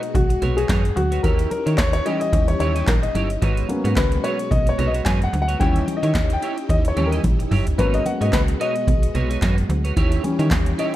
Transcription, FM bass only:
0.15 B1
0.42 B1
0.69 F#2
0.97 D2
1.24 D#2
1.67 D#3
1.78 D#2
2.33 D#2
2.60 D#2
2.88 A#1
3.15 G1
3.42 G#1
3.85 G#2
3.97 C#2
4.51 B1
4.78 B1
5.06 F#2
5.33 D2
5.61 D#2
6.03 D#3
6.15 D#2
6.69 D#2
6.97 D#2
7.24 A#1
7.51 G1
7.79 G#1
8.21 G#2
8.33 C#2
8.87 B1
9.15 B1
9.42 F#2
9.69 D2
9.97 D#2
10.39 D#3
10.51 D#2

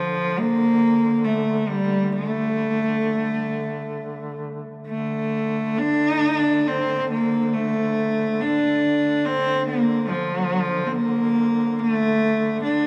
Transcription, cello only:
Already playing: F3
0.38 A#3
1.24 A3
1.68 G3
2.13 A3
4.87 A3
5.78 D4
6.67 C4
7.10 A#3
7.53 A3
8.41 D4
9.25 C4
9.67 A#3
10.09 F3
10.87 C4
10.93 A#3
11.79 A3
12.63 D4

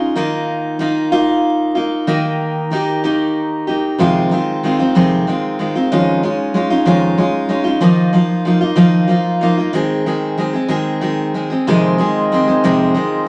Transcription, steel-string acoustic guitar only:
Already playing: G#3 C#4 D#4 F4
0.16 D#3 A#3 D#4 F4
0.79 D#3 A#3 D#4 F4
1.12 D#3 A#3 D#4 F4
1.75 A#3 D#4 F4
2.07 D#3 A#3 D#4 G4
2.71 D#3 A#3 D#4 G4
3.04 D#3 A#3 D#4 G4
3.67 A#3 D#4 G4
3.98 F2 C3 D#3 G#3 C4 F4
4.31 D#3 G#3 C4 F4
4.63 D#3 G#3 C4 F4
4.79 D#3 G#3 C4 F4
4.95 F2 C3 D#3 G#3 C4 F4
5.27 D#3 G#3 C4 F4
5.59 D#3 G#3 C4 F4
5.75 D#3 G#3 C4 F4
5.92 F2 D#3 G#3 C#4 D#4 F4
6.23 G#3 C#4 D#4 F4
6.54 G#3 C#4 D#4 F4
6.70 G#3 C#4 D#4 F4
6.86 F2 D#3 G#3 C#4 D#4 F4
7.18 G#3 C#4 D#4 F4
7.49 G#3 C#4 D#4 F4
7.64 G#3 C#4 D#4 F4
7.81 D#3 F3 A#3 D#4 F4
8.13 F3 A#3 D#4 F4
8.45 F3 A#3 D#4 F4
8.61 A#3 D#4 F4
8.76 D#3 F3 A#3 D#4 F4
9.08 F3 A#3 D#4 F4
9.41 F3 A#3 D#4 F4
9.58 A#3 D#4 F4
9.73 D#3 G#3 C4 G#4
10.06 D#3 G#3 C4 G#4
10.38 D#3 G#3 C4 G#4
10.53 G#3 C4 G#4
10.68 D#3 G#3 C4 G#4
11.01 D#3 G#3 C4 G#4
11.34 D#3 G#3 C4 G#4
11.50 G#3 C4 G#4
11.67 F2 C3 D#3 G#3 C4 G#4
11.98 D#3 G#3 C4 G#4
12.32 D#3 G#3 C4 G#4
12.48 D#3 G#3 C4 G#4
12.64 F2 C3 D#3 G#3 C4 G#4
12.94 D#3 G#3 C4 G#4

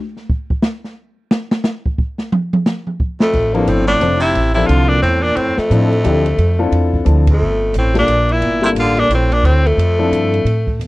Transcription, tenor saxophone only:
3.23 A3
3.55 A#3
3.68 C4
3.88 D4
4.22 E4
4.55 E4
4.67 F4
4.89 D4
5.02 C4
5.23 D4
5.37 C4
5.59 A3
7.33 A3
7.79 C4
7.99 D4
8.32 E4
8.65 E4
8.80 F4
8.99 D4
9.14 C4
9.33 D4
9.45 C4
9.66 A3

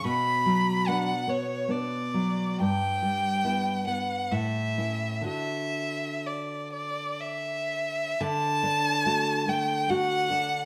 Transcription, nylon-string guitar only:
0.05 B2
0.46 F#3
0.88 B3 D4
1.27 B3
1.68 B3 D4
2.14 F#3
2.60 G2
3.02 G3
3.44 B3 E4
3.87 B3
4.32 A2
4.78 C#4 E4
5.21 D3 D4 F#4
8.21 D3
8.63 D4
9.06 A3 F#4
9.48 A3
9.90 A3 F#4
10.30 D4

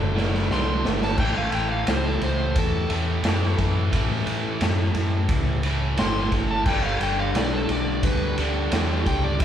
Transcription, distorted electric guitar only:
Already playing: D2 A2 D3
0.15 D2 A2 D3
0.50 D2 A2 D3
1.19 A2 E3 A3
2.90 A2 E3 A3
3.23 A2 E3
3.27 A3
3.92 A2 E3 A3
5.64 E3 A3
5.68 A2
5.97 A2 E3 A3
6.66 G2 D3 G3
8.38 G2 D3 G3
8.72 G2 D3
8.76 G3
9.41 D2

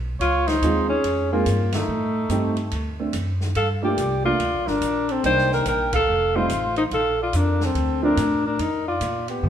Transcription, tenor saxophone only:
0.21 F4
0.48 D#4
0.89 C#4
1.32 A#3
1.75 A3
3.57 A4
3.84 G4
4.25 F4
4.69 D4
5.11 C4
5.26 C5
5.54 A#4
5.68 A#4
5.95 A4
6.36 F4
6.77 D#4
6.94 A4
7.23 F4
7.36 D4
7.65 C4
8.05 D4
8.47 D4
8.60 D#4
8.88 F4
9.30 B3

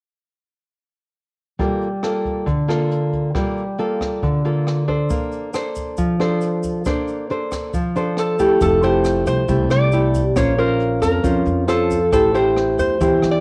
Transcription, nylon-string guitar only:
1.59 G3 A#3 F4 A4
2.03 A#3 F4 A4
2.46 D3
2.68 A#3 F4 A4
3.35 G3 A#3 F4 A4
3.79 A#3 F4 A4
4.23 D3
4.45 A#3 F4 A4
4.88 D4 A4 C5
5.10 A#3
5.54 D4 A4 C5
5.98 F3
6.20 D4 A4 C5
6.86 A#3 D4 A4 C5
7.30 D4 A4 C5
7.74 F3
7.96 D4 A4 C5
8.39 A3 E4 G4
8.61 F3
8.83 A3 E4 G4
9.49 C3 A3 E4 G4
9.93 A3 E4 G4
10.36 A#3 C#4 F4 C5
10.58 C#4 F4 C5
11.24 F3 C#4 F4 C5
11.68 C#4 F4 C5
12.12 A3 E4 G4 C5
12.34 E4 G4 C5
13.01 E3 E4 G4 C5

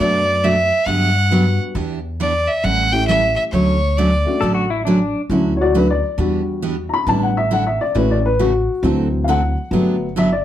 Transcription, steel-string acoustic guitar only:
0.00 B2 F#3 A3 D4 F#4
0.44 B2 F#3 A3 D4 F#4
0.87 D3 F#3 B3 D4 G4
1.31 D3 F#3 B3 D4 G4
1.75 E3 B3 D4 G4
2.20 E3 B3 D4 G4
2.63 E3 G3 C#4 E4 A4
3.09 E3 G3 C#4 E4 A4
3.53 D3 F#3 A3 C#4 F#4
3.98 D3 F#3 A3 C#4 F#4
4.42 D3 F#3 A3 C#4 F#4
4.87 D3 F#3 A3 C#4 F#4
5.31 D3 F#3 A3 C#4 F#4
5.75 D3 F#3 A3 C#4 F#4
6.18 E3 B3 D4 G4
6.62 E3 B3 D4 G4
7.07 D3 G3 D4 E4 A4
7.51 D3 G3 D4 E4 A4
7.95 C#3 E3 A3 C#4 F#4
8.39 C#3 E3 A3 C#4 F#4
8.83 D3 A3 C4 F#4 A4
9.28 D3 A3 C4 F#4 A4
9.73 D3 F#3 B3 D4 G4
10.16 D3 F#3 B3 D4 G4

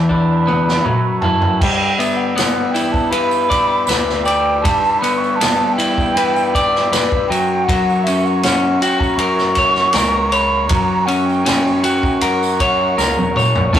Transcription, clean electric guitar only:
Already playing: E3
0.09 D4
0.47 B3
0.85 F#3
1.24 E4
1.62 G3
1.99 B3
2.36 B3
2.74 E4
3.12 B4
3.50 D5
3.88 B4
4.26 D5
4.64 G3
5.02 B3
5.41 B3
5.78 E4
6.17 B4
6.55 D5
6.92 B4
7.30 F#3
7.69 F#3
8.07 C#4
8.44 C#4
8.82 F#4
9.20 A#4
9.58 C#5
9.95 A#4
10.32 C#5
10.70 F#3
11.08 C#4
11.45 C#4
11.84 F#4
12.22 A#4
12.61 C#5
12.98 A#4
13.37 C#5
13.73 A3 C#4 E4 A4 C#5

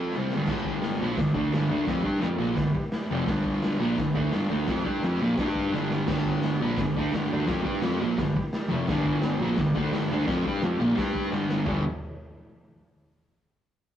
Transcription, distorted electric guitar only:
Already playing: F3 C4 F4
0.16 C3 G3 C4
0.35 G2 D3 G3
0.50 G2 D3 G3
1.01 A#2 F3 A#3
1.19 G2 D3
1.34 D3 A3 D4
1.52 G2 D3 G3
1.70 D3 A3 D4
1.87 F3 C4 F4
2.03 G3 D4 G4
2.20 F3 C4 F4
2.37 A#2 F3 A#3
2.55 G2 D3
2.74 muted distorted electric guitar stroke
3.11 F2 C3 F3
3.29 G2 D3 G3
3.79 A#2 F3 A#3
3.96 G2 D3
4.15 D3 A3 D4
4.32 G2 D3 G3
4.50 D3 A3 D4
4.68 F3 C4 F4
4.85 G3 D4 G4
5.03 F3 C4 F4
5.21 A#2 F3 A#3
5.39 G3 D4 G4
5.72 G2 D3 G3
6.07 G2 D3 G3
6.61 A#2 F3 A#3
6.80 G2 D3
6.96 D3 A3 D4
7.14 G2 D3 G3
7.30 D3 A3 D4
7.46 F3 C4 F4
7.62 G3 D4 G4
7.82 F3 C4 F4
8.00 A#2 F3 A#3
8.18 G2 D3
8.37 muted distorted electric guitar stroke
8.69 F2 C3 F3
8.88 G2 D3 G3
9.41 A#2 F3 A#3
9.57 G2 D3
9.75 D3 A3 D4
9.92 G2 D3 G3
10.11 D3 A3 D4
10.26 F3 C4 F4
10.46 G3 D4 G4
10.63 F3 C4 F4
10.79 A#2 F3 A#3
10.94 G3 D4 G4
11.30 G2 D3 G3
11.66 G2 D3 G3

